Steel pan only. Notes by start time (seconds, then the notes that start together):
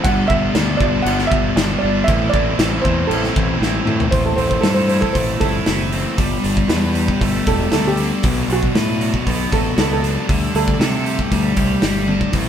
0.04 F#5
0.28 E5
0.77 D5
1.02 F#5
1.27 E5
1.79 D5
2.04 E5
2.30 D5
2.82 C5
3.07 A4
4.11 C5
4.26 A4
4.36 C5
4.49 C5
4.61 A4
4.75 C5
4.88 C5
5.01 A4
5.13 C5
5.40 A4
7.48 A4
7.73 A4
7.87 G4
8.53 F#4
9.53 A4
9.79 A4
9.93 A4
10.56 A4